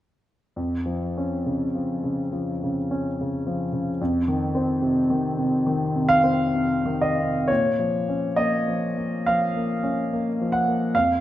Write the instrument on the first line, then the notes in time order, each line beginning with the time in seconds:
grand piano
0.56 F2
0.86 F3
1.17 C#4
1.46 C#3
1.75 F3
2.04 C#3
2.33 F3
2.63 C#3
2.91 C#4
3.21 C#3
3.47 F3
3.73 C#3
4.01 F2
4.28 D#3
4.55 C4
4.82 C3
5.10 D#3
5.38 C3
5.66 D#3
5.96 C3
6.09 F5
6.24 C4
6.54 C3
6.85 D#3
7.01 D#5
7.19 C3
7.48 A#2 C#5
7.79 F3
8.09 C#4
8.36 A#3 D#5
8.68 F3
8.98 A#3
9.26 F3 F5
9.56 A#3
9.83 C#4
10.13 A#3
10.41 F3
10.52 F#5
10.68 A#3
10.95 F2 F5